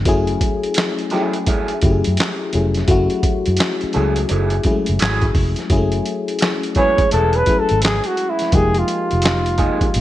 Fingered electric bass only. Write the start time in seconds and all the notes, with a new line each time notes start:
0.07 F#1
1.84 F#1
2.07 F#2
2.55 F1
2.89 F#1
3.24 muted fingered electric bass stroke
3.48 F#2
3.84 muted fingered electric bass stroke
3.96 C#2
4.31 F#1
4.66 muted fingered electric bass stroke
4.89 F#1
5.02 G#1
5.36 F1
5.71 F#1
7.14 E1
7.71 G#1
8.54 F1
9.13 F1
9.96 A#1